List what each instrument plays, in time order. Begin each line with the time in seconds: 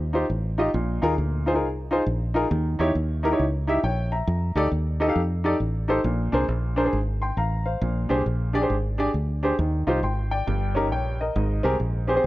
Already playing: fingered electric bass D#2
0.13 grand piano D#4 F4 G4 C5
0.30 fingered electric bass A1
0.58 grand piano D#4 F4 G4 D#5
0.74 fingered electric bass A#1, grand piano A#2
1.02 fingered electric bass D#2, grand piano D#4 F4 G#4 A#4
1.18 fingered electric bass D2
1.46 grand piano D#4 F4 G#4 C5
1.54 grand piano D#4 F4 G#4 A#4
1.62 fingered electric bass C2
1.91 grand piano D#4 F4 G#4 C5
2.06 fingered electric bass A#1
2.34 grand piano D#4 F4 G#4 A#4
2.51 fingered electric bass D#2, grand piano D#3
2.79 fingered electric bass E2, grand piano D#4 E4 G4 C#5
2.95 fingered electric bass D#2
3.23 grand piano D#4 E4 G4 A#4
3.31 grand piano D#4 E4 G4 C#5
3.39 fingered electric bass C#2
3.67 grand piano D#4 E4 G4 E5
3.83 fingered electric bass A#1, grand piano C#5 G5
4.12 grand piano E5 A#5
4.27 fingered electric bass F2
4.55 fingered electric bass D2, grand piano D#4 G4 A4 D5
4.72 fingered electric bass D#2
5.00 grand piano D#4 G4 A4 D#5
5.07 grand piano D#4 G4 A4 F5
5.16 fingered electric bass F2
5.44 grand piano D#4 G4 A4 D5
5.60 fingered electric bass A1
5.88 grand piano D#4 G4 A4 C5
6.04 fingered electric bass A#1, grand piano A#2
6.32 fingered electric bass C2, grand piano D4 G#4 A#4 C5
6.48 fingered electric bass A#1
6.76 grand piano D4 G#4 A#4 C5
6.84 grand piano D4 G#4 A#4 C5
6.93 fingered electric bass G#1
7.22 grand piano G5 C6
7.37 fingered electric bass A1, grand piano F5 A#5
7.66 grand piano C5 F5
7.82 fingered electric bass A#1, grand piano A#2
8.09 fingered electric bass C2, grand piano D4 G4 G#4 C5
8.26 fingered electric bass A#1
8.53 grand piano D4 G4 G#4 D5
8.61 grand piano D4 G4 G#4 C5
8.70 fingered electric bass G#1
8.98 grand piano D4 G4 G#4 D5
9.14 fingered electric bass D2
9.43 grand piano D4 G4 G#4 C5
9.59 fingered electric bass D#2, grand piano D#3
9.87 fingered electric bass C2, grand piano D#4 F4 G4 C5
10.03 fingered electric bass G#1, grand piano G5 C6
10.31 grand piano D5 G5
10.47 fingered electric bass G1, grand piano G2
10.75 grand piano C#4 D#4 G4 A#4
10.92 fingered electric bass A#1, grand piano C#5 G5
11.21 grand piano A#4 D#5
11.36 fingered electric bass G#1, grand piano G#2
11.63 fingered electric bass C2, grand piano C4 G4 G#4 A#4
11.80 fingered electric bass A#1
12.07 grand piano C4 G4 G#4 C5
12.15 grand piano C4 G4 G#4 C5